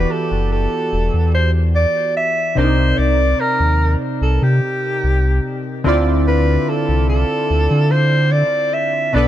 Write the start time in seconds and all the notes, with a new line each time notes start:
Already playing: E3 B3 F#4 G4 B4 D5
0.11 A4
0.31 F#1
0.52 A4
0.93 E1
1.14 E2
1.34 C5
1.75 D5
2.17 E5
2.55 C2 C3 C4 D4 A#4 C5
2.60 D5
2.64 D#4
2.98 C2 D5
3.40 A#4
3.60 D#2
4.21 C2 A4
4.42 C3 G4
5.04 C2
5.84 D2 D3 C4 E4 F4
5.88 D5
6.27 B4
6.69 A4
6.89 C2
7.09 A4
7.50 D2
7.71 D3
7.91 C5
8.32 D5
8.73 E5
9.13 B1 B2 B3 D4 A4 D5
9.17 B4